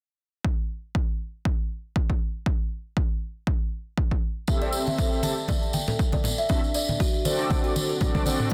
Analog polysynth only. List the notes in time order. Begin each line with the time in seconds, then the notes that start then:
4.48 C4 G4 A4 E5
5.24 C4 G4 A4 E5
6.50 C4 F#4 A4 E5
7.25 C4 F#4 A4 D5
8.01 C4 F#4 A4 D5
8.26 C4 F#4 A4 D5